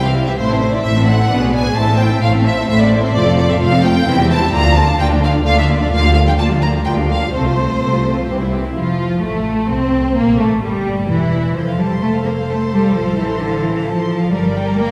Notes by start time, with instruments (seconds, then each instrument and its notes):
Already playing: double bass section C2, cello section C2
0.03 viola section E3 C4, violin section G4 E5 F5
0.15 viola section G3 E4, violin section E4 C5
0.27 viola section E3 C4, violin section G4 E5
0.37 double bass section A1, cello section A2, viola section A3 E4, violin section C5
0.50 viola section E3 C4, violin section A4 E5
0.60 viola section A3 E4, violin section C5
0.71 viola section E3 C4, violin section A4 D5 E5
0.83 double bass section A1, cello section A2, viola section A3 E4, violin section C5 E5
0.96 viola section E3 C4, violin section A4 E5
1.07 viola section A3 E4, violin section C5 F#5
1.19 viola section E3 C4, violin section A4 E5
1.28 double bass section B1, cello section B2, viola section B3 D4, violin section B4 D5
1.40 viola section G#3 B3, violin section G#4 B4
1.52 viola section B3 D4, violin section B4 D5 G#5
1.62 viola section G#3 B3, violin section G#4 B4
1.74 double bass section A1, cello section A2, viola section A3 E4, violin section C5 A5
1.85 viola section C4, violin section A4 E5
1.97 viola section A3 E4, violin section C5 G5
2.09 viola section C4, violin section A4 E5
2.21 double bass section A1, cello section A2, viola section A3 E4, violin section C5 F5
2.33 viola section C4, violin section A4 E5
2.44 viola section A3 E4, violin section C5 E5
2.57 viola section C4, violin section A4 E5
2.68 double bass section A1, cello section A2, viola section A3 E4, violin section C5 E5
2.80 viola section C4, violin section A4 D5 E5
2.91 viola section A3 E4, violin section C5
3.02 viola section C4, violin section A4 C5 E5
3.13 double bass section F1, cello section F2, viola section A3 F4, violin section C5 D5
3.25 viola section C4 A4, violin section A4 F5
3.36 viola section A3 F4, violin section C5 D5
3.47 viola section C4 A4, violin section A4 E5 F5
3.59 double bass section F1, cello section F2, viola section A3 F4, violin section C5 F5
3.71 viola section C4 A4, violin section A4 F5
3.82 viola section A3 F4, violin section C5 G5
3.95 viola section C4 A4, violin section A4 F5
4.05 double bass section E1, cello section E2, viola section E3 C4, violin section E4 C5
4.18 viola section G3 E4, violin section G4 E5
4.30 viola section E3 C4, violin section E4 C5 A5
4.41 viola section G3 E4, violin section G4 E5
4.52 double bass section D2, cello section D2, viola section D3 A#3, violin section F4 D5 A#5
4.63 viola section F3 D4, violin section D4 F5
4.75 viola section D3 A#3, violin section F4 D5 A5
4.86 viola section F3 D4, violin section D4 F5
4.98 cello section D2, double bass section D2, viola section D3 A#3, violin section F4 D5 G5
5.08 viola section F3 D4, violin section D4 F5
5.21 viola section D3 A#3, violin section F4 D5 F5
5.31 viola section F3 D4, violin section D4 F5
5.44 cello section D2, double bass section D2, viola section D3 A#3, violin section F4 D5 F5
5.56 viola section F3 D4, violin section D4 E5 F5
5.67 viola section D3 A#3, violin section F4 D5
5.79 viola section F3 D4, violin section D4 D5 F5
5.90 cello section D2, double bass section D2, viola section F3 A#3, violin section F4 D5 F5
6.03 viola section F3 G3, violin section D4 F5
6.15 viola section F3 A#3, violin section F4 D5 F5
6.26 viola section F3 G3, violin section D4 F5 G5
6.37 cello section D2, double bass section D2, viola section F3 A#3, violin section F4 D5 A5
6.49 viola section F3 G3, violin section D4 F5
6.62 viola section F3 A#3, violin section F4 D5 A#5
6.73 viola section F3 G3, violin section D4 F5
6.84 cello section D2, double bass section D2, viola section F3 A#3, violin section F4 D5 G5
6.96 viola section F3 G3, violin section D4 F5
7.09 viola section F3 A#3, violin section F4 D5 F5
7.21 viola section F3 G3, violin section D4 F5
7.31 cello section C2, double bass section C2, viola section A3 C4, violin section A4 C5
7.45 viola section F3 A3, violin section F4 C5
7.57 viola section A3 C4, violin section A4
7.69 viola section F3 A3, violin section F4 C5
7.80 cello section C2, double bass section C2, viola section A3 C4, violin section A4
7.92 viola section F3 A3, violin section F4 C5
8.02 viola section A3 C4, violin section A4
8.14 viola section F3, violin section F4 C5
8.18 viola section A3
8.26 double bass section C2, cello section C2, viola section E3 C4, violin section G4
8.38 viola section G3 E4, violin section E4 C5
8.50 viola section E3 C4, violin section G4
8.63 viola section G3 E4, violin section E4 C5
8.76 double bass section F1, viola section F3, cello section F3, violin section F4
9.22 double bass section A1, cello section A3, violin section A3, viola section A3
9.69 double bass section C2, violin section C4, viola section C4, cello section C4
10.14 double bass section A#1, viola section A#3, cello section A#3, violin section A#3
10.37 double bass section A1, viola section A3, cello section A3, violin section A3
10.62 double bass section G1, viola section G3, cello section G3, violin section G3
11.08 double bass section E1, viola section E3, cello section E3, violin section E4
11.54 double bass section F1, cello section F3, viola section A4, violin section C5
11.69 violin section F5
11.78 cello section G3, violin section A5
11.92 violin section C6
12.01 cello section A3, violin section A5
12.14 violin section F5
12.24 cello section A#3, violin section C5
12.36 violin section F5
12.49 cello section A3, violin section A5
12.61 violin section C6
12.72 cello section G3, violin section A5
12.84 violin section F5
12.94 double bass section A1, cello section F3, violin section C5
13.05 violin section F5
13.16 cello section E3, violin section A5
13.28 violin section C6
13.40 cello section D3, violin section A5
13.51 violin section F5
13.63 cello section E3, violin section C5
13.75 violin section F5
13.86 cello section F3, violin section A5
13.99 violin section C6
14.11 violin section A5
14.22 violin section F5
14.32 double bass section G1, cello section G3, viola section A#4, violin section A#4 D5
14.45 violin section D5
14.56 violin section G5
14.67 violin section A#5
14.77 cello section A#3, violin section G5
14.88 violin section D5